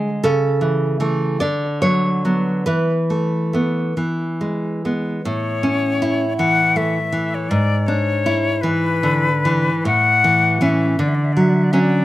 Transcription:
0.00 0.20 D3 medium
0.00 0.23 G#3 soft
0.23 1.39 C#3 medium
0.23 1.38 A4 medium
0.61 0.99 E3 soft
1.00 1.38 E3 soft
1.00 1.38 A3 medium
1.40 2.65 D3 medium
1.40 1.81 D5 medium
1.82 2.24 F#3 soft
1.82 2.65 C#5 medium
2.25 2.65 F#3 soft
2.25 2.65 B3 soft
2.66 3.92 E3 soft
2.66 3.92 B4 medium
3.10 3.52 A3 soft
3.53 3.93 A3 soft
3.53 3.93 B3 soft
3.97 5.19 E3 soft
4.41 4.84 G#3 soft
4.85 5.21 G#3 soft
4.85 5.21 B3 soft
5.24 7.46 A2 medium
5.24 6.33 C#5 medium
5.63 6.23 C#4 medium
6.02 6.60 E4 medium
6.38 6.97 E3 medium
6.38 6.78 F#5 loud
6.76 7.35 A3 medium
6.76 7.36 E5 medium
7.12 7.50 E3 medium
7.34 7.51 C#5 medium
7.49 9.81 G#2 medium
7.49 7.88 D5 loud
7.86 8.47 D4 medium
7.86 8.63 C#5 medium
8.26 8.87 E4 medium
8.61 9.27 E3 medium
8.61 9.84 B4 medium
9.03 9.69 D3 medium
9.45 9.85 E3 medium
9.85 10.96 A2 medium
9.85 10.64 F#5 loud
10.24 10.60 E3 medium
10.61 10.95 E3 medium
10.61 10.95 C#4 medium
10.61 11.02 E5 medium
10.99 12.05 D3 medium
10.99 11.10 D5 medium
11.08 11.16 E5 medium
11.14 11.26 D5 medium
11.24 11.34 E5 medium
11.33 11.42 D5 medium
11.37 11.72 F#3 medium
11.37 11.50 E5 medium
11.49 11.55 D5 medium
11.54 11.65 E5 medium
11.63 11.73 D5 medium
11.71 12.05 F#3 soft
11.71 12.05 C#4 medium
11.71 11.81 E5 medium
11.79 12.05 D5 medium

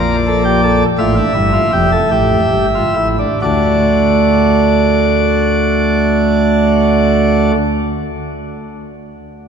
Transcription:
0.00 0.83 A#1 medium
0.00 0.84 A#2 medium
0.00 0.15 A#4 medium
0.00 0.83 D5 medium
0.27 0.43 A4 medium
0.45 0.60 G4 medium
0.64 0.85 A4 medium
0.99 1.21 A1 medium
0.99 1.21 A2 medium
0.99 1.14 F4 medium
0.99 3.08 E5 medium
1.16 1.32 D4 medium
1.35 1.58 G1 medium
1.35 1.59 G2 medium
1.35 1.51 E4 medium
1.53 1.70 F4 medium
1.73 1.97 F1 medium
1.73 1.97 F2 medium
1.73 1.90 G4 medium
1.92 2.10 A4 medium
2.11 2.37 A1 medium
2.11 2.37 A2 medium
2.11 2.66 G4 medium
2.53 2.80 G1 medium
2.53 2.81 G2 medium
2.75 2.94 F4 medium
2.96 3.25 A1 medium
2.96 3.24 A2 medium
2.96 3.16 E4 medium
3.19 3.39 D4 medium
3.42 7.51 D2 medium
3.42 7.52 D3 medium
3.42 7.54 A3 medium
3.42 7.55 D4 medium
3.42 7.52 F#4 medium
3.42 7.52 D5 medium

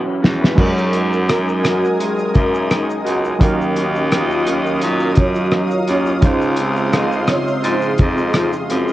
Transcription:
0.00 0.57 E3 medium
0.00 0.52 F#3 medium
0.00 0.53 C#4 medium
0.00 0.54 E4 medium
0.00 0.22 F#4 medium
0.00 0.54 G#4 medium
0.00 0.40 B4 medium
0.06 2.70 C#4 medium
0.22 0.51 E2 medium
0.22 0.93 F#4 medium
0.22 snare medium
0.41 0.65 B4 medium
0.41 snare medium
0.55 1.87 F#2 loud
0.55 3.40 F#3 medium
0.55 3.35 G#3 medium
0.55 3.36 C#4 medium
0.55 3.36 D#4 medium
0.55 3.37 F#4 medium
0.55 3.37 A#4 medium
0.55 6.18 D#5 medium
0.55 3.37 G#5 medium
0.55 3.37 D#6 medium
0.55 kick loud
0.55 crash loud
0.60 3.37 A#4 medium
0.78 shaker medium
0.93 1.63 F#4 medium
0.93 closed hi-hat medium
0.93 shaker medium
1.13 shaker medium
1.28 2.33 A#4 medium
1.28 cross-stick loud
1.28 closed hi-hat medium
1.28 shaker medium
1.48 shaker soft
1.63 3.04 F#4 medium
1.63 cross-stick medium
1.63 closed hi-hat medium
1.63 shaker medium
1.85 shaker medium
1.99 3.48 G#3 medium
1.99 closed hi-hat medium
1.99 shaker medium
2.19 shaker medium
2.34 2.92 F#2 loud
2.34 5.84 A#4 medium
2.34 kick medium
2.34 closed hi-hat soft
2.34 shaker medium
2.54 shaker medium
2.70 3.76 D#4 medium
2.70 cross-stick loud
2.70 closed hi-hat medium
2.70 shaker medium
2.90 shaker medium
3.05 3.33 C#2 medium
3.05 4.13 F#4 medium
3.05 closed hi-hat medium
3.05 shaker medium
3.25 shaker soft
3.39 4.78 D#2 loud
3.39 6.24 D#3 medium
3.39 6.18 F#3 medium
3.39 6.18 C#4 medium
3.39 6.19 D#4 medium
3.39 8.93 F5 medium
3.39 6.20 F5 medium
3.39 8.93 D#6 medium
3.39 kick loud
3.39 closed hi-hat medium
3.39 shaker medium
3.44 6.20 A#4 medium
3.61 shaker medium
3.76 4.48 C#4 medium
3.76 closed hi-hat medium
3.76 shaker medium
3.95 shaker soft
4.11 5.58 F4 medium
4.11 cross-stick loud
4.11 closed hi-hat medium
4.11 shaker medium
4.31 shaker soft
4.47 5.89 C#4 medium
4.47 closed hi-hat medium
4.47 shaker medium
4.66 shaker soft
4.81 5.19 A#2 loud
4.81 5.54 F#3 medium
4.81 closed hi-hat medium
4.81 shaker medium
5.00 5.17 C#4 medium
5.00 5.16 A#4 medium
5.00 shaker medium
5.15 5.74 F#2 loud
5.15 5.35 F4 medium
5.15 5.35 C#5 medium
5.15 kick medium
5.15 closed hi-hat soft
5.15 shaker medium
5.35 5.70 F#4 medium
5.35 5.69 D#5 medium
5.35 shaker medium
5.51 6.32 F#3 medium
5.51 cross-stick medium
5.51 closed hi-hat medium
5.51 shaker medium
5.70 6.20 F4 medium
5.70 6.19 C#5 medium
5.70 shaker medium
5.87 6.16 D#2 medium
5.87 6.59 C#4 medium
5.87 closed hi-hat medium
5.87 shaker medium
6.06 shaker medium
6.21 7.34 C#2 loud
6.21 8.93 C#3 medium
6.21 8.93 G#3 medium
6.21 8.93 D#4 medium
6.21 8.93 F4 medium
6.21 8.93 C6 medium
6.21 kick loud
6.21 closed hi-hat medium
6.21 shaker medium
6.26 8.93 C5 medium
6.42 shaker medium
6.56 7.29 C4 medium
6.56 closed hi-hat medium
6.56 shaker medium
6.76 shaker soft
6.92 7.98 D#4 medium
6.92 7.11 G#4 medium
6.92 7.11 F5 medium
6.92 cross-stick loud
6.92 closed hi-hat medium
6.92 shaker medium
7.11 7.27 D#5 medium
7.11 shaker soft
7.27 8.70 C4 medium
7.27 7.47 F4 medium
7.27 7.47 C#5 medium
7.27 cross-stick medium
7.27 closed hi-hat medium
7.27 shaker medium
7.47 7.62 D#5 medium
7.47 shaker soft
7.63 7.92 G#2 loud
7.63 8.34 F3 medium
7.63 7.82 D#4 medium
7.63 7.82 C5 medium
7.63 closed hi-hat medium
7.63 shaker medium
7.82 8.85 C4 medium
7.82 8.85 G#4 medium
7.82 shaker medium
7.98 8.56 F2 loud
7.98 8.93 D#4 medium
7.98 kick medium
7.98 closed hi-hat medium
7.98 shaker medium
8.18 shaker medium
8.34 8.93 F3 medium
8.34 cross-stick medium
8.34 closed hi-hat medium
8.34 shaker medium
8.53 shaker medium
8.70 8.93 F#2 medium
8.70 8.93 C4 medium
8.70 closed hi-hat medium
8.70 shaker medium
8.88 shaker soft

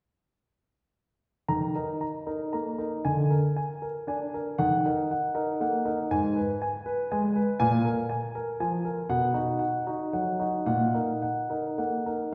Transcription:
1.48 1.74 D#3 medium
1.48 1.76 A#5 medium
1.75 2.03 D#4 soft
1.75 2.02 A#4 soft
2.01 2.28 A#5 soft
2.27 2.54 D#4 soft
2.27 2.54 A#4 soft
2.53 2.80 A#3 soft
2.53 2.80 A#5 soft
2.79 3.05 D#4 soft
2.79 3.05 A#4 soft
3.05 3.30 D3 soft
3.05 3.32 G#5 medium
3.31 3.58 A#4 soft
3.56 3.83 G#5 soft
3.82 4.09 A#4 soft
4.07 4.35 D4 soft
4.07 4.35 G#5 soft
4.34 4.60 A#4 soft
4.58 4.84 D#3 medium
4.58 4.86 F#5 medium
4.85 5.12 D#4 soft
4.85 5.12 A#4 soft
5.11 5.37 F#5 soft
5.35 5.62 D#4 soft
5.35 5.62 A#4 soft
5.60 5.87 A#3 soft
5.60 5.88 F#5 soft
5.85 6.11 D#4 soft
5.85 6.11 A#4 soft
6.11 6.36 G#2 medium
6.11 6.38 G#5 medium
6.36 6.63 B4 soft
6.62 6.88 G#5 medium
6.86 7.13 B4 medium
7.12 7.38 G#3 medium
7.12 7.37 G#5 medium
7.36 7.61 B4 medium
7.60 7.84 A#2 medium
7.60 7.86 G#5 medium
7.85 8.11 A#4 medium
8.09 8.36 G#5 medium
8.35 8.61 A#4 medium
8.60 8.86 F3 medium
8.60 8.86 G#5 medium
8.85 9.10 A#4 soft
9.10 9.34 B2 medium
9.10 9.36 F#5 medium
9.34 9.62 D#4 soft
9.34 9.62 F#4 soft
9.59 9.87 F#5 soft
9.87 10.14 D#4 soft
9.87 10.14 F#4 soft
10.13 10.41 F#3 soft
10.13 10.41 F#5 soft
10.39 10.67 D#4 soft
10.39 10.66 F#4 soft
10.66 10.93 A#2 medium
10.66 10.96 F#5 medium
10.94 11.24 D#4 soft
10.94 11.24 A#4 soft
11.22 11.52 F#5 soft
11.50 11.79 D#4 soft
11.50 11.79 A#4 soft
11.78 12.07 A#3 soft
11.78 12.07 F#5 soft
12.06 12.33 D#4 soft
12.06 12.33 A#4 soft

